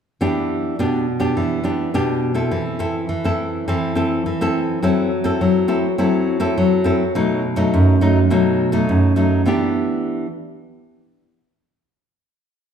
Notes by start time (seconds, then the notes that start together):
0.21 E3 B3 D4 G4
0.79 B2 B3 D4 G4
1.20 B3 D4 G4
1.37 E3
1.64 B3 D4 G4
1.94 B2 B3 D4 G4
2.34 C4 E4 A4
2.51 E3
2.79 C4 E4 A4
3.09 E3
3.24 C4 E4 A4
3.68 E3 C4 E4 A4
3.95 C4 E4 A4
4.26 E3
4.41 C4 E4 A4
4.83 F#3 C4 E4 A4
5.24 C4 E4 A4
5.41 F#3
5.68 C4 E4 A4
5.98 F#3 C4 E4 A4
6.40 C4 E4 A4
6.58 F#3
6.84 C4 E4 A4
7.15 B2 F#3 A3 D#4
7.56 F#3 A3 D#4
7.74 F#2
8.01 F#3 A3 D#4
8.30 B2 F#3 A3 D#4
8.72 F#3 A3 D#4
8.89 F#2
9.16 F#3 A3 D#4
9.46 E3 B3 D4 G4